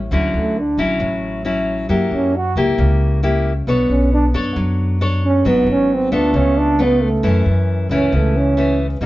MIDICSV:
0, 0, Header, 1, 4, 480
1, 0, Start_track
1, 0, Tempo, 444774
1, 119, Time_signature, 4, 2, 24, 8
1, 9776, End_track
2, 0, Start_track
2, 0, Title_t, "Trombone"
2, 0, Program_c, 0, 57
2, 389, Note_on_c, 0, 57, 68
2, 642, Note_on_c, 0, 62, 74
2, 658, Note_off_c, 0, 57, 0
2, 861, Note_off_c, 0, 62, 0
2, 2303, Note_on_c, 0, 61, 75
2, 2547, Note_on_c, 0, 66, 84
2, 2563, Note_off_c, 0, 61, 0
2, 2774, Note_off_c, 0, 66, 0
2, 4216, Note_on_c, 0, 61, 69
2, 4432, Note_off_c, 0, 61, 0
2, 4469, Note_on_c, 0, 62, 81
2, 4605, Note_off_c, 0, 62, 0
2, 5666, Note_on_c, 0, 61, 87
2, 5914, Note_on_c, 0, 59, 80
2, 5931, Note_off_c, 0, 61, 0
2, 6138, Note_off_c, 0, 59, 0
2, 6157, Note_on_c, 0, 61, 92
2, 6416, Note_on_c, 0, 60, 77
2, 6432, Note_off_c, 0, 61, 0
2, 6626, Note_on_c, 0, 62, 93
2, 6642, Note_off_c, 0, 60, 0
2, 6879, Note_on_c, 0, 61, 83
2, 6895, Note_off_c, 0, 62, 0
2, 7099, Note_on_c, 0, 62, 93
2, 7115, Note_off_c, 0, 61, 0
2, 7372, Note_on_c, 0, 59, 80
2, 7388, Note_off_c, 0, 62, 0
2, 7593, Note_on_c, 0, 57, 76
2, 7610, Note_off_c, 0, 59, 0
2, 8058, Note_off_c, 0, 57, 0
2, 8552, Note_on_c, 0, 61, 76
2, 8800, Note_on_c, 0, 57, 66
2, 8817, Note_off_c, 0, 61, 0
2, 9033, Note_on_c, 0, 61, 83
2, 9049, Note_off_c, 0, 57, 0
2, 9497, Note_off_c, 0, 61, 0
2, 9776, End_track
3, 0, Start_track
3, 0, Title_t, "Nylon-string guitar"
3, 0, Program_c, 1, 24
3, 125, Note_on_c, 1, 50, 53
3, 130, Note_on_c, 1, 54, 53
3, 131, Note_on_c, 1, 61, 47
3, 140, Note_on_c, 1, 64, 51
3, 601, Note_off_c, 1, 54, 0
3, 603, Note_off_c, 1, 61, 0
3, 605, Note_off_c, 1, 64, 0
3, 846, Note_on_c, 1, 54, 58
3, 851, Note_on_c, 1, 61, 56
3, 852, Note_on_c, 1, 64, 61
3, 1059, Note_off_c, 1, 50, 0
3, 1081, Note_on_c, 1, 45, 53
3, 1525, Note_off_c, 1, 61, 0
3, 1526, Note_off_c, 1, 54, 0
3, 1528, Note_off_c, 1, 64, 0
3, 1561, Note_on_c, 1, 54, 51
3, 1568, Note_on_c, 1, 61, 53
3, 1573, Note_on_c, 1, 64, 59
3, 2003, Note_off_c, 1, 54, 0
3, 2006, Note_off_c, 1, 61, 0
3, 2008, Note_off_c, 1, 64, 0
3, 2017, Note_off_c, 1, 45, 0
3, 2039, Note_on_c, 1, 54, 53
3, 2042, Note_on_c, 1, 58, 49
3, 2046, Note_on_c, 1, 64, 55
3, 2051, Note_on_c, 1, 67, 50
3, 2518, Note_off_c, 1, 58, 0
3, 2521, Note_off_c, 1, 64, 0
3, 2522, Note_off_c, 1, 67, 0
3, 2771, Note_on_c, 1, 58, 58
3, 2778, Note_on_c, 1, 64, 54
3, 2779, Note_on_c, 1, 67, 62
3, 2977, Note_off_c, 1, 54, 0
3, 3008, Note_on_c, 1, 49, 50
3, 3448, Note_off_c, 1, 58, 0
3, 3450, Note_off_c, 1, 64, 0
3, 3452, Note_off_c, 1, 67, 0
3, 3486, Note_on_c, 1, 58, 51
3, 3490, Note_on_c, 1, 64, 55
3, 3497, Note_on_c, 1, 67, 59
3, 3793, Note_off_c, 1, 58, 0
3, 3794, Note_off_c, 1, 64, 0
3, 3798, Note_off_c, 1, 67, 0
3, 3941, Note_off_c, 1, 49, 0
3, 3969, Note_on_c, 1, 59, 54
3, 3976, Note_on_c, 1, 62, 47
3, 3978, Note_on_c, 1, 69, 53
3, 3985, Note_on_c, 1, 73, 55
3, 4650, Note_off_c, 1, 62, 0
3, 4652, Note_off_c, 1, 69, 0
3, 4654, Note_off_c, 1, 73, 0
3, 4687, Note_on_c, 1, 62, 59
3, 4692, Note_on_c, 1, 69, 60
3, 4700, Note_on_c, 1, 73, 63
3, 4902, Note_off_c, 1, 59, 0
3, 4926, Note_on_c, 1, 54, 52
3, 5366, Note_off_c, 1, 62, 0
3, 5368, Note_off_c, 1, 69, 0
3, 5373, Note_off_c, 1, 73, 0
3, 5408, Note_on_c, 1, 62, 56
3, 5415, Note_on_c, 1, 69, 59
3, 5418, Note_on_c, 1, 73, 60
3, 5846, Note_off_c, 1, 62, 0
3, 5850, Note_off_c, 1, 69, 0
3, 5850, Note_off_c, 1, 73, 0
3, 5860, Note_off_c, 1, 54, 0
3, 5882, Note_on_c, 1, 44, 53
3, 5886, Note_on_c, 1, 54, 49
3, 5893, Note_on_c, 1, 59, 51
3, 5895, Note_on_c, 1, 62, 53
3, 6567, Note_off_c, 1, 54, 0
3, 6567, Note_off_c, 1, 62, 0
3, 6568, Note_off_c, 1, 59, 0
3, 6603, Note_on_c, 1, 57, 64
3, 6609, Note_on_c, 1, 59, 58
3, 6612, Note_on_c, 1, 65, 57
3, 6818, Note_off_c, 1, 44, 0
3, 6861, Note_on_c, 1, 49, 55
3, 7284, Note_off_c, 1, 57, 0
3, 7287, Note_off_c, 1, 59, 0
3, 7288, Note_off_c, 1, 65, 0
3, 7326, Note_on_c, 1, 57, 53
3, 7333, Note_on_c, 1, 59, 52
3, 7338, Note_on_c, 1, 65, 54
3, 7633, Note_off_c, 1, 57, 0
3, 7636, Note_off_c, 1, 59, 0
3, 7639, Note_off_c, 1, 65, 0
3, 7787, Note_off_c, 1, 49, 0
3, 7805, Note_on_c, 1, 52, 53
3, 7811, Note_on_c, 1, 42, 52
3, 7815, Note_on_c, 1, 57, 50
3, 7820, Note_on_c, 1, 61, 55
3, 8485, Note_off_c, 1, 52, 0
3, 8490, Note_off_c, 1, 57, 0
3, 8492, Note_off_c, 1, 61, 0
3, 8535, Note_on_c, 1, 52, 61
3, 8541, Note_on_c, 1, 57, 57
3, 8545, Note_on_c, 1, 61, 70
3, 8742, Note_off_c, 1, 42, 0
3, 8776, Note_on_c, 1, 49, 50
3, 9211, Note_off_c, 1, 52, 0
3, 9212, Note_off_c, 1, 57, 0
3, 9212, Note_off_c, 1, 61, 0
3, 9250, Note_on_c, 1, 52, 51
3, 9257, Note_on_c, 1, 57, 52
3, 9264, Note_on_c, 1, 61, 61
3, 9554, Note_off_c, 1, 52, 0
3, 9558, Note_off_c, 1, 57, 0
3, 9562, Note_off_c, 1, 61, 0
3, 9704, Note_off_c, 1, 49, 0
3, 9728, Note_on_c, 1, 48, 51
3, 9733, Note_on_c, 1, 55, 54
3, 9740, Note_on_c, 1, 58, 50
3, 9741, Note_on_c, 1, 63, 54
3, 9776, Note_off_c, 1, 48, 0
3, 9776, Note_off_c, 1, 55, 0
3, 9776, Note_off_c, 1, 58, 0
3, 9776, Note_off_c, 1, 63, 0
3, 9776, End_track
4, 0, Start_track
4, 0, Title_t, "Upright bass"
4, 0, Program_c, 2, 32
4, 118, Note_on_c, 2, 38, 89
4, 342, Note_off_c, 2, 38, 0
4, 364, Note_on_c, 2, 38, 74
4, 808, Note_off_c, 2, 38, 0
4, 836, Note_on_c, 2, 33, 76
4, 1061, Note_off_c, 2, 33, 0
4, 1077, Note_on_c, 2, 33, 93
4, 1996, Note_off_c, 2, 33, 0
4, 2042, Note_on_c, 2, 42, 85
4, 2264, Note_off_c, 2, 42, 0
4, 2279, Note_on_c, 2, 42, 75
4, 2726, Note_off_c, 2, 42, 0
4, 2760, Note_on_c, 2, 37, 79
4, 2983, Note_off_c, 2, 37, 0
4, 3002, Note_on_c, 2, 37, 98
4, 3919, Note_off_c, 2, 37, 0
4, 3961, Note_on_c, 2, 35, 86
4, 4184, Note_off_c, 2, 35, 0
4, 4203, Note_on_c, 2, 35, 72
4, 4649, Note_off_c, 2, 35, 0
4, 4684, Note_on_c, 2, 42, 74
4, 4906, Note_off_c, 2, 42, 0
4, 4922, Note_on_c, 2, 42, 93
4, 5839, Note_off_c, 2, 42, 0
4, 5879, Note_on_c, 2, 32, 88
4, 6104, Note_off_c, 2, 32, 0
4, 6115, Note_on_c, 2, 32, 80
4, 6565, Note_off_c, 2, 32, 0
4, 6604, Note_on_c, 2, 38, 76
4, 6826, Note_off_c, 2, 38, 0
4, 6838, Note_on_c, 2, 37, 93
4, 7757, Note_off_c, 2, 37, 0
4, 7809, Note_on_c, 2, 42, 90
4, 8029, Note_off_c, 2, 42, 0
4, 8048, Note_on_c, 2, 42, 75
4, 8492, Note_off_c, 2, 42, 0
4, 8519, Note_on_c, 2, 37, 79
4, 8743, Note_off_c, 2, 37, 0
4, 8764, Note_on_c, 2, 37, 92
4, 9679, Note_off_c, 2, 37, 0
4, 9721, Note_on_c, 2, 36, 89
4, 9776, Note_off_c, 2, 36, 0
4, 9776, End_track
0, 0, End_of_file